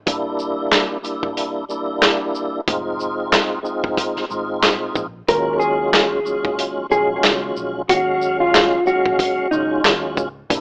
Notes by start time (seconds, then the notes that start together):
0.06 G3 A#3 D4 E4, kick, closed hi-hat
0.39 shaker
0.72 snare, clap, closed hi-hat
1.02 G3 A#3 D4 E4, closed hi-hat, shaker
1.23 kick
1.37 closed hi-hat
1.69 G3 A#3 D4 E4, shaker
2.02 snare, clap, closed hi-hat
2.35 shaker
2.68 F1 G#3 C4 D#4 F4, kick, closed hi-hat
3.00 shaker
3.33 snare, clap, closed hi-hat
3.63 G#3 C4 D#4 F4, shaker
3.84 F1, kick
3.97 kick, closed hi-hat
4.16 muted fingered electric bass stroke, snare
4.29 G#1 G#3 C4 D#4 F4, shaker
4.63 A#1, snare, clap, closed hi-hat
4.95 A#1, kick, shaker
5.27 D#2 F#3 G#3 C#4 F4 A#4, kick, closed hi-hat
5.59 G#4, shaker
5.93 snare, clap, closed hi-hat
6.23 D#2 F#3 G#3 C#4 F4, shaker
6.45 G#1, kick
6.59 closed hi-hat
6.78 muted fingered electric bass stroke
6.89 A#1 D#2 F#3 G#3 C#4 F4 G#4, shaker
7.23 C#2, snare, clap, closed hi-hat
7.57 A#1, shaker
7.87 D#2 F#3 G#3 C#4 F#4 F5, kick, closed hi-hat
8.22 shaker
8.40 F4
8.54 snare, clap, closed hi-hat
8.85 D#2 F#3 G#3 C#4 F#4 F5, shaker
9.06 A#1, kick
9.19 kick, closed hi-hat
9.39 muted fingered electric bass stroke
9.50 C#2 D#2 F#3 G#3 C#4 D#4 F4, shaker
9.84 D#2, snare, clap, closed hi-hat
10.17 C#2, kick, shaker
10.50 C2 G3 A#3 D4 E4, kick, closed hi-hat